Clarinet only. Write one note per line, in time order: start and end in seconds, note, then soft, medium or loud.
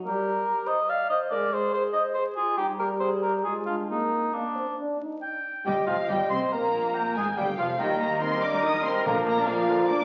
0.04 0.63 G4 medium
0.66 0.76 C5 medium
0.88 1.12 D5 medium
1.11 1.30 C5 medium
1.31 1.51 A#4 medium
1.53 1.72 G#4 medium
1.73 1.94 G#4 medium
1.95 2.15 C5 medium
2.15 2.38 G#4 medium
2.37 2.58 F4 medium
2.59 2.68 D#4 medium
2.81 2.90 G4 medium
3.02 3.25 G#4 medium
3.23 3.47 G4 medium
3.46 3.66 F4 medium
3.67 3.89 D4 soft
3.89 4.35 C4 medium
4.33 4.78 A#3 soft
5.22 5.62 G5 medium
5.67 6.51 D#5 medium
6.52 6.96 F5 medium
6.94 7.36 G5 medium
7.37 7.81 F5 medium
7.79 8.22 D#5 medium
8.22 9.04 D#5 medium
9.06 9.50 F5 medium
9.48 10.04 D5 medium